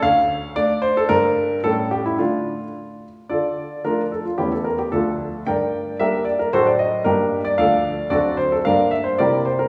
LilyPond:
<<
  \new Staff \with { instrumentName = "Grand piano" } { \time 2/4 \key d \minor \tempo 4 = 112 f''4 d''8 c''16 a'16 | bes'4 a'8 g'16 e'16 | f'4. r8 | <f' a' d''>4 <d' f' bes'>8 a'16 f'16 |
<cis' e' g'>16 a'16 bes'16 g'16 <d' f' a'>4 | <bes' d'' g''>4 <g' bes' e''>8 d''16 bes'16 | <fis' a' c''>16 d''16 ees''8 <d' g' bes'>8. d''16 | <a' d'' f''>4 <fis' a' d''>8 c''16 a'16 |
<bes' d'' f''>8 e''16 c''16 <g' bes' d''>8 c''16 bes'16 | }
  \new Staff \with { instrumentName = "Grand piano" } { \clef bass \time 2/4 \key d \minor d,4 <a d'>4 | <g, g d'>4 <a, g a cis'>4 | <d a d'>4 r4 | d4 <f a>4 |
<e, e a>4 <d, f a>4 | g,4 <g bes d'>4 | <a, fis a d'>4 <g, g bes>4 | <d, f a d'>4 <d, fis c' d'>4 |
<g, g bes d'>4 <c g bes e'>4 | }
>>